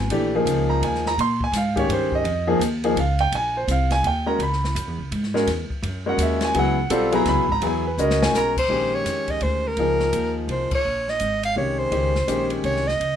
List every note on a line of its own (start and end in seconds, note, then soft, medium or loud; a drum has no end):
0.10 0.45 A#1 medium
0.10 0.31 E3 medium
0.10 0.31 A3 medium
0.10 0.32 D4 medium
0.10 0.32 G4 medium
0.10 ride medium
0.34 1.11 F3 medium
0.34 1.11 A#3 medium
0.34 1.11 D#4 medium
0.34 1.11 G#4 medium
0.45 0.81 C#2 loud
0.45 hi-hat pedal medium
0.45 ride medium
0.70 0.82 A#5 loud
0.82 1.17 D#2 medium
0.82 1.06 G#5 medium
0.82 ride medium
0.95 snare soft
1.06 1.19 A#5 loud
1.06 snare medium
1.17 1.51 A#2 loud
1.17 1.42 C6 loud
1.17 ride medium
1.41 1.55 G#5 loud
1.41 kick medium
1.52 1.88 G#2 loud
1.52 snare soft
1.52 hi-hat pedal medium
1.52 ride medium
1.57 1.78 F5 medium
1.76 2.23 D#3 medium
1.76 2.23 C#4 medium
1.76 2.23 G4 medium
1.76 2.23 G#4 medium
1.76 1.91 C#5 loud
1.76 kick medium
1.76 ride medium
1.88 2.24 G2 loud
1.88 2.13 C5 medium
1.88 ride medium
2.12 2.59 D#5 medium
2.12 kick medium
2.24 2.59 F2 loud
2.24 ride medium
2.47 2.60 F3 medium
2.47 2.60 A#3 medium
2.47 2.60 D#4 medium
2.47 2.60 G#4 loud
2.59 2.95 D#2 loud
2.59 hi-hat pedal medium
2.59 ride medium
2.84 2.96 F3 medium
2.84 2.96 A#3 medium
2.84 2.96 D#4 medium
2.84 2.96 G#4 medium
2.84 ride medium
2.96 3.31 C#2 loud
2.96 3.20 F5 medium
2.96 ride medium
3.19 3.33 G5 loud
3.19 ride medium
3.32 3.67 A#1 medium
3.32 3.56 G#5 loud
3.32 ride medium
3.57 3.69 C5 medium
3.68 4.02 C2 loud
3.68 3.92 F5 medium
3.68 hi-hat pedal medium
3.68 ride medium
3.90 4.04 G#5 loud
3.90 snare soft
3.90 ride medium
4.03 4.38 D#2 medium
4.03 4.28 G5 medium
4.03 ride medium
4.26 4.39 G#3 medium
4.26 4.39 C#4 medium
4.26 4.39 F#4 medium
4.26 4.39 A#4 medium
4.26 4.40 A#5 loud
4.39 4.74 C#2 medium
4.39 5.09 B5 medium
4.39 ride medium
4.53 snare soft
4.64 snare medium
4.75 4.88 F#2 loud
4.75 hi-hat pedal medium
4.75 ride medium
4.88 4.98 E2 medium
4.98 5.10 C#2 medium
5.11 5.46 G#2 loud
5.11 ride medium
5.23 snare soft
5.34 5.46 G#3 medium
5.34 5.46 C#4 medium
5.34 5.47 F#4 medium
5.34 5.47 A#4 medium
5.34 snare soft
5.47 5.68 E2 medium
5.47 snare soft
5.47 ride medium
5.70 muted upright bass stroke soft
5.70 kick medium
5.83 6.17 F#2 loud
5.83 ride medium
6.06 6.53 G#3 medium
6.06 6.53 C#4 medium
6.06 6.53 F#4 medium
6.06 6.53 A#4 medium
6.06 6.20 F#5 medium
6.18 6.53 D#2 loud
6.18 hi-hat pedal medium
6.18 ride medium
6.22 6.43 E5 medium
6.41 snare medium
6.41 ride medium
6.45 6.56 G#5 loud
6.54 6.90 C#2 medium
6.54 6.76 F#3 medium
6.54 6.76 B3 medium
6.54 6.76 E4 medium
6.54 6.76 G#4 medium
6.54 ride medium
6.59 7.12 F#5 loud
6.90 7.25 B1 loud
6.90 7.11 G3 medium
6.90 7.11 C4 medium
6.90 7.11 F4 medium
6.90 7.11 A4 loud
6.90 hi-hat pedal medium
6.90 ride medium
7.12 7.44 F#3 medium
7.12 7.44 B3 medium
7.12 7.44 E4 medium
7.12 7.45 G#4 loud
7.12 7.27 A#5 loud
7.12 ride medium
7.26 7.37 C#2 medium
7.26 7.50 B5 loud
7.26 snare soft
7.26 ride medium
7.37 7.48 B1 medium
7.49 7.60 G#1 medium
7.49 7.63 A#5 loud
7.49 kick medium
7.61 7.96 E2 loud
7.61 7.83 F#3 medium
7.61 7.83 B3 medium
7.61 7.83 E4 medium
7.61 7.83 G#4 medium
7.61 ride medium
7.67 7.87 G#5 medium
7.87 7.99 B4 medium
7.98 8.33 C#2 loud
7.98 8.53 G#3 medium
7.98 8.53 C#4 medium
7.98 8.53 F#4 medium
7.98 8.53 A#4 medium
7.98 8.22 D#5 medium
7.98 hi-hat pedal medium
8.10 snare medium
8.22 8.35 G#5 loud
8.22 snare loud
8.33 8.68 B1 medium
8.33 8.56 A#4 medium
8.33 snare medium
8.33 hi-hat pedal medium
8.38 8.50 A#5 loud
8.57 8.96 C5 medium
8.57 kick medium
8.57 crash medium
8.69 9.04 A#1 medium
8.69 9.70 D#3 medium
8.69 9.70 G#3 medium
8.69 9.70 C#4 medium
8.69 9.70 G4 medium
8.95 9.32 C#5 medium
9.05 9.40 F2 medium
9.05 snare soft
9.05 hi-hat pedal medium
9.05 ride medium
9.28 9.44 D#5 medium
9.28 kick medium
9.28 ride soft
9.41 9.76 D2 medium
9.41 9.69 C5 medium
9.41 ride medium
9.67 10.38 A#4 medium
9.77 10.12 C#2 medium
9.77 10.78 F3 medium
9.77 10.78 A#3 medium
9.77 10.78 D#4 medium
9.77 10.78 G#4 medium
9.77 ride medium
10.00 snare soft
10.13 10.47 D#2 medium
10.13 hi-hat pedal medium
10.13 ride medium
10.48 10.70 C2 medium
10.48 10.71 C5 medium
10.48 ride medium
10.71 11.11 C#5 medium
10.71 muted upright bass stroke soft
10.71 kick medium
10.71 crash medium
10.85 11.20 A#1 medium
11.08 11.44 D#5 medium
11.08 snare soft
11.20 11.56 G#1 medium
11.20 hi-hat pedal soft
11.20 ride medium
11.43 11.57 F5 medium
11.43 ride medium
11.56 11.91 C2 medium
11.56 11.90 D#3 medium
11.56 11.90 G#3 medium
11.56 11.90 C#4 soft
11.56 11.90 G4 medium
11.56 11.80 C#5 medium
11.79 12.51 C5 medium
11.91 12.27 C#2 medium
11.91 12.13 D#3 medium
11.91 12.13 G#3 medium
11.91 12.13 C#4 medium
11.91 12.13 G4 medium
11.91 ride medium
12.15 snare medium
12.27 12.63 A#1 medium
12.27 12.82 D#3 medium
12.27 12.82 G#3 medium
12.27 12.82 C#4 medium
12.27 12.83 G4 medium
12.27 hi-hat pedal soft
12.27 ride medium
12.50 ride soft
12.64 12.99 C2 medium
12.64 12.89 C#5 medium
12.64 ride medium
12.76 snare soft
12.87 13.16 D#5 medium
12.87 snare soft
13.00 13.16 C#2 medium
13.00 ride medium